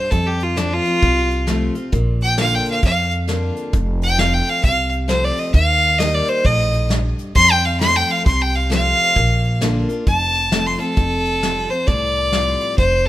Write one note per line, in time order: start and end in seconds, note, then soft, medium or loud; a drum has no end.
0.00 0.12 C5 medium
0.10 0.98 F2 medium
0.10 0.78 F2 medium
0.10 0.28 A4 medium
0.10 kick loud
0.10 closed hi-hat medium
0.27 0.45 G4 medium
0.40 0.59 F4 medium
0.40 closed hi-hat medium
0.56 0.83 F3 medium
0.56 0.84 A3 medium
0.56 0.84 C4 medium
0.56 0.75 D4 medium
0.56 0.83 F4 medium
0.56 snare loud
0.56 closed hi-hat medium
0.73 1.60 F4 loud
0.84 1.02 C4 soft
0.84 1.01 F4 medium
0.84 closed hi-hat medium
1.02 1.68 C2 medium
1.02 1.89 C3 medium
1.02 kick loud
1.02 closed hi-hat medium
1.30 closed hi-hat medium
1.47 1.74 F3 medium
1.47 1.74 A3 medium
1.47 1.75 C4 medium
1.47 1.74 F4 medium
1.47 snare loud
1.47 closed hi-hat medium
1.75 1.93 C4 soft
1.75 1.92 F4 medium
1.75 closed hi-hat medium
1.92 2.59 A#1 medium
1.92 2.79 A#2 medium
1.92 kick loud
1.92 closed hi-hat medium
2.21 2.37 G5 loud
2.21 closed hi-hat medium
2.38 2.81 D3 medium
2.38 2.81 A#3 medium
2.38 2.82 D4 medium
2.38 2.82 F4 medium
2.38 2.56 F5 loud
2.38 snare loud
2.38 closed hi-hat medium
2.55 2.68 G5 medium
2.66 closed hi-hat medium
2.70 2.84 F5 medium
2.83 3.70 F2 medium
2.83 3.49 F2 medium
2.83 3.11 F5 loud
2.83 kick loud
2.83 closed hi-hat medium
3.11 closed hi-hat medium
3.28 3.71 D3 medium
3.28 3.71 A#3 medium
3.28 3.72 D4 medium
3.28 3.72 F4 medium
3.28 snare medium
3.28 closed hi-hat medium
3.56 closed hi-hat medium
3.73 4.39 F1 loud
3.73 4.60 F2 medium
3.73 kick loud
3.73 closed hi-hat medium
4.02 4.20 G5 loud
4.02 closed hi-hat medium
4.17 4.61 F3 medium
4.17 4.62 A3 medium
4.17 4.62 C4 medium
4.17 4.62 F4 medium
4.17 4.35 F5 loud
4.17 snare loud
4.17 closed hi-hat medium
4.34 4.51 G5 medium
4.47 4.63 F5 loud
4.47 closed hi-hat medium
4.63 5.30 C2 medium
4.63 5.50 C3 medium
4.63 4.90 F5 loud
4.63 kick loud
4.63 closed hi-hat medium
4.92 closed hi-hat medium
5.08 5.52 F3 medium
5.08 5.52 A3 medium
5.08 5.52 C4 medium
5.08 5.53 F4 medium
5.08 5.26 C5 medium
5.08 snare loud
5.08 closed hi-hat medium
5.24 5.41 D5 medium
5.37 5.54 D#5 medium
5.37 closed hi-hat medium
5.54 6.20 D#2 medium
5.54 6.41 D#3 medium
5.54 6.00 F5 loud
5.54 kick loud
5.54 closed hi-hat medium
5.82 closed hi-hat medium
5.99 6.43 G3 medium
5.99 6.43 A#3 medium
5.99 6.43 D#4 medium
5.99 6.43 G4 medium
5.99 6.16 D#5 loud
5.99 snare loud
5.99 closed hi-hat medium
6.15 6.30 D5 medium
6.28 6.47 C5 loud
6.28 closed hi-hat medium
6.44 7.11 A#1 medium
6.44 6.88 A2 medium
6.44 6.89 D#5 loud
6.44 kick loud
6.44 closed hi-hat medium
6.73 closed hi-hat medium
6.89 7.33 G2 medium
6.89 snare loud
6.89 closed hi-hat medium
7.19 closed hi-hat medium
7.35 8.22 F2 medium
7.35 8.01 F2 medium
7.35 7.53 C6 loud
7.35 kick loud
7.35 closed hi-hat medium
7.51 7.67 G5 loud
7.64 7.80 F5 medium
7.64 closed hi-hat medium
7.80 8.24 F3 medium
7.80 8.24 A3 medium
7.80 8.24 C4 medium
7.80 8.25 F4 medium
7.80 7.98 C6 loud
7.80 snare loud
7.80 closed hi-hat medium
7.96 8.12 G5 loud
8.09 8.25 F5 loud
8.09 closed hi-hat medium
8.26 8.92 C2 medium
8.26 9.13 C3 medium
8.26 8.43 C6 medium
8.26 kick loud
8.26 closed hi-hat medium
8.42 8.57 G5 medium
8.54 8.70 F5 medium
8.54 closed hi-hat medium
8.70 9.14 F3 medium
8.70 9.14 A3 medium
8.70 9.14 C4 medium
8.70 9.15 F4 loud
8.70 9.59 F5 loud
8.70 snare loud
8.70 closed hi-hat medium
8.99 closed hi-hat medium
9.16 9.82 A#1 loud
9.16 10.03 A#2 loud
9.16 kick loud
9.16 closed hi-hat medium
9.44 closed hi-hat medium
9.61 9.88 D3 medium
9.61 9.88 A#3 medium
9.61 9.89 D4 medium
9.61 9.88 F4 medium
9.61 snare loud
9.61 closed hi-hat medium
9.89 10.07 D4 soft
9.89 10.06 F4 medium
9.89 closed hi-hat medium
10.07 10.73 F1 loud
10.07 10.94 F2 medium
10.07 10.68 A5 loud
10.07 kick loud
10.07 closed hi-hat medium
10.35 closed hi-hat medium
10.51 10.78 F3 medium
10.51 10.79 A3 medium
10.51 10.79 C4 medium
10.51 10.77 F4 medium
10.51 snare loud
10.51 closed hi-hat medium
10.67 10.79 C6 medium
10.79 10.97 C4 medium
10.79 10.96 F4 medium
10.79 11.71 A4 loud
10.79 closed hi-hat medium
10.97 11.63 F1 medium
10.97 11.84 F2 medium
10.97 kick loud
10.97 closed hi-hat medium
11.25 closed hi-hat medium
11.41 11.69 F3 medium
11.41 11.69 G3 medium
11.41 11.69 C4 medium
11.41 11.68 F4 medium
11.41 snare loud
11.41 closed hi-hat medium
11.70 11.88 C4 soft
11.70 11.87 F4 medium
11.70 11.89 C5 medium
11.70 closed hi-hat medium
11.87 12.54 C2 medium
11.87 12.74 A2 medium
11.87 12.78 D5 loud
11.87 kick loud
11.87 closed hi-hat medium
12.16 closed hi-hat soft
12.32 12.76 F3 medium
12.32 12.76 G3 medium
12.32 12.77 C4 medium
12.32 12.77 F4 medium
12.32 snare loud
12.32 closed hi-hat medium
12.61 closed hi-hat medium
12.78 13.09 F1 medium
12.78 13.09 F2 medium
12.78 13.07 C5 loud
12.78 kick loud
12.78 closed hi-hat medium
13.06 13.09 A4 medium
13.06 closed hi-hat medium